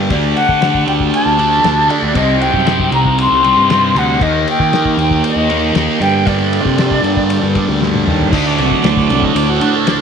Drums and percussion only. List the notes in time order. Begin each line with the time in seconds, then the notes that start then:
0.10 kick, ride
0.37 ride
0.49 kick
0.62 snare, ride
0.75 kick
0.88 ride
1.00 kick
1.14 ride
1.39 ride
1.64 snare, ride
1.90 ride
2.15 kick, ride
2.42 ride
2.54 kick
2.67 snare, ride
2.80 kick
2.92 ride
3.05 kick
3.18 ride
3.44 ride
3.70 snare, ride
3.96 ride
4.21 kick, ride
4.48 ride
4.60 kick
4.73 snare, ride
4.85 kick
4.99 ride
5.11 kick
5.24 ride
5.50 ride
5.75 snare, ride
6.02 ride
6.27 kick, ride
6.53 ride
6.65 kick
6.78 snare, ride
6.91 kick
7.04 ride
7.17 kick
7.30 ride
7.55 kick, ride
7.82 snare
7.94 high tom
8.07 mid tom
8.20 floor tom
8.33 kick, crash
8.58 ride
8.71 kick
8.84 snare, ride
8.97 kick, snare
9.10 ride
9.23 kick
9.36 ride
9.61 ride
9.87 snare, ride